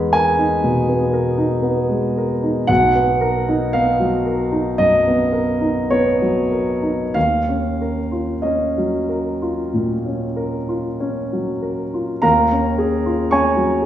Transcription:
Already playing: E2 G#3 B3 D#4 A#4 B5
0.13 A#4 G#5
0.38 D#4
0.63 B2
0.89 B3
1.13 A#4
1.38 D#4
1.63 B3
1.89 G#3
2.17 A#4
2.43 D#4
2.67 B1 F#5
2.95 B3
3.21 A#4
3.48 D#4
3.73 B3 F5
4.00 F#3
4.26 A#4
4.52 D#4
4.78 F#2 D#5
5.07 B3
5.33 A#4
5.61 D#4
5.90 B3 C#5
6.21 F#3
6.52 A#4
6.83 D#4
7.14 D#2 F5
7.49 C#4
7.82 A#4
8.12 F4
8.42 C#4 D#5
8.78 F#3
9.09 A#4
9.42 F4
9.74 A#2
10.06 C#4
10.37 A#4
10.69 F4
11.00 C#4
11.33 F#3
11.62 A#4
11.94 F4
12.22 D#2 A#4 F5 A#5
12.52 C#4
12.78 G#4
13.06 F4
13.31 C#4 C#5 G#5 C#6
13.56 F#3
13.82 G#4

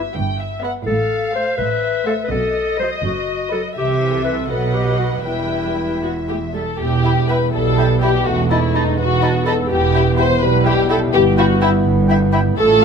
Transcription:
Already playing: E5
0.15 G1 G2 G5
0.40 E5
0.62 B3 B4 E5 F#5
0.86 A1 A2 A4 F5
1.34 A3 C5 F5
1.58 A1 A2 B4 E5
2.06 A3 A4 C5 F5
2.24 B4
2.31 B1 B2 A4 D#5
2.79 F#3 B4 C5 D#5
3.03 F#1 F#2 F#4
3.51 F#3 A4 B4 D#5
3.76 C2 C3 E3 G4 E5
4.13 A4
4.25 B4
4.49 B1 B2 F#3 A4 B4 D#5 F#5
4.74 G4
4.99 F#4
5.26 E1 E2 G3 E4 B4 E5 G5
6.02 B3 F#4
6.28 A3 G4
6.54 G3 A4
6.78 E1 E2 B3 E4 G4
7.04 E4 E5 G5 B5
7.28 E4 B4 E5 G5 B5
7.52 B1 B2 G3 A4
7.78 E4 E5 G5 B5
8.01 E4 G4 E5 G5 B5
8.26 E1 E2 A3 D#4 F#4
8.49 D#4 E4 D#5 A5 B5
8.74 D#4 D#5 A5 B5
8.98 E1 E2 B3 F#4
9.21 D#4 D#5 A5 B5
9.45 D#4 A4 D#5 A5 B5
9.69 E1 E2 B3 E4 G4
9.94 E4 E5 G5 B5
10.18 E4 C5 E5 G5 B5
10.42 B1 B2 G3 B4
10.65 E4 G4 E5 G5 B5
10.89 E4 A4 E5 G5 B5
11.13 G1 G2 B3 G4
11.37 E4 F#4 E5 G5 B5
11.61 E4 E5 G5 B5
11.86 G1 G2
12.08 E4 E5 G5 B5
12.33 E4 E5 G5 B5
12.57 A1 A2 A3 F4 A4
12.81 F4 F5 A5

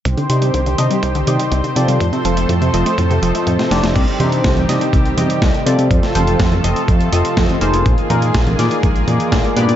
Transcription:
0.05 C2 C3 D#3 C4 G4 C5, kick, closed hi-hat
0.17 D3, closed hi-hat
0.30 C3 D#3 D4 D#4 G4 C5, closed hi-hat
0.42 G3, closed hi-hat
0.54 C2 C3, kick, closed hi-hat
0.66 D3, closed hi-hat
0.78 C3 D#3 D4 D#4 G4 D#5, closed hi-hat
0.91 G3, closed hi-hat
1.03 C2 C3, kick, closed hi-hat
1.15 D3, closed hi-hat
1.27 C3 D#3 D#4 G4 D5 D#5, closed hi-hat
1.40 G3, closed hi-hat
1.52 C2 C3, kick, closed hi-hat
1.64 D3, closed hi-hat
1.76 C3 D#3 F3 C4 F4 A4 D5, closed hi-hat
1.88 C3 G3, closed hi-hat
2.00 F2 A2 F3 A3 A4, kick, closed hi-hat
2.13 C3, closed hi-hat
2.25 F1 F3 C4 F4 A4 C5, closed hi-hat
2.37 A3, closed hi-hat
2.49 F2 A2, kick, closed hi-hat
2.61 C3, closed hi-hat
2.74 F1 F3 C4 F4 A4 D#5, closed hi-hat
2.86 A3, closed hi-hat
2.98 F2 A2, kick, closed hi-hat
3.10 C3, closed hi-hat
3.22 F1 F3 C4 F4 A4 D#5, closed hi-hat
3.35 A3, closed hi-hat
3.47 F2 A2, kick, closed hi-hat
3.59 C3, snare, closed hi-hat
3.71 F1 C3 F3 D4 D#4 G4 D5, snare, closed hi-hat
3.83 F1 A3, snare, closed hi-hat
3.96 C2 D#3 G3 C4 G4, kick, closed hi-hat, crash
4.08 closed hi-hat
4.20 C3 D4 D#4 G4 C5, closed hi-hat, high conga
4.32 closed hi-hat
4.44 C2, kick, snare, closed hi-hat
4.57 closed hi-hat, high conga
4.69 C3 D4 D#4 G4 D#5, snare, closed hi-hat
4.81 closed hi-hat
4.93 C2, kick, closed hi-hat
5.05 closed hi-hat
5.17 C3 D#4 G4 D5 D#5, closed hi-hat, high conga
5.30 closed hi-hat
5.42 C2, kick, snare, closed hi-hat
5.54 closed hi-hat
5.66 C3 F3 C4 F4 A4 D5, closed hi-hat
5.79 C3, closed hi-hat
5.91 F2 C3 F3 A3 F4 A4, kick, closed hi-hat
6.03 snare, closed hi-hat
6.15 F1 F3 C4 F4 A4 C5, closed hi-hat, high conga
6.27 closed hi-hat
6.39 F2, kick, snare, closed hi-hat
6.52 closed hi-hat, high conga
6.64 F1 F3 C4 F4 A4 D#5, closed hi-hat
6.76 closed hi-hat
6.88 F2, kick, closed hi-hat
7.01 closed hi-hat
7.13 F1 F3 C4 F4 A4 D#5, closed hi-hat
7.25 closed hi-hat
7.37 F2, kick, snare, closed hi-hat
7.49 closed hi-hat, high conga
7.61 F1 A#3 D#4 F4 G#4 C5, closed hi-hat
7.74 F1, closed hi-hat
7.86 A#1 D#3 G#3 A#3 G#4, kick, closed hi-hat
7.98 closed hi-hat
8.10 A#2 A#3 D#4 F4 G#4 A#4, closed hi-hat, high conga
8.22 closed hi-hat
8.35 A#1, kick, snare, closed hi-hat
8.47 closed hi-hat, high conga
8.59 A#2 A#3 D#4 F4 G#4 D5, snare, closed hi-hat
8.71 closed hi-hat
8.83 A#1, kick, closed hi-hat
8.96 closed hi-hat
9.08 A#2 A#3 D#4 F4 G#4 D5, closed hi-hat, high conga
9.20 closed hi-hat
9.32 A#1, kick, snare, closed hi-hat
9.44 closed hi-hat
9.56 G2 A#2 B3 D4 G4 D5, closed hi-hat
9.69 A#2, closed hi-hat

